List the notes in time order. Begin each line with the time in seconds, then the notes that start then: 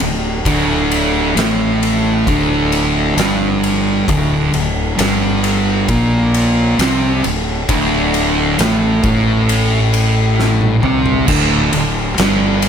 0.00 D1 D2, ride
0.45 D1 D2 D3, kick, ride
0.91 ride
1.36 A1 A2 A3, snare, ride
1.83 ride
2.27 D1 D2 D3, kick, ride
2.72 ride
3.17 G1 G2 G3, snare, ride
3.64 ride
4.08 D1 D2 D3, kick, ride
4.53 D1 D2, ride
4.98 G1 G2 G3, snare, ride
5.44 ride
5.88 A#1 A#2 A#3, kick, ride
6.34 ride
6.79 C2 C3 C4, snare, ride
7.24 D1 D2, ride
7.68 D1 D2 D3, kick, ride
8.14 ride
8.59 A1 A2 A3, snare, ride
9.04 A1 A2 A3, kick, ride
9.49 ride
9.94 ride
10.40 snare
10.61 high tom
10.83 C2 C3 C4, mid tom
11.06 floor tom
11.27 D1 D2 D3, kick, crash
11.73 D1 D2, ride
12.18 G1 G2 G3, snare, ride
12.62 ride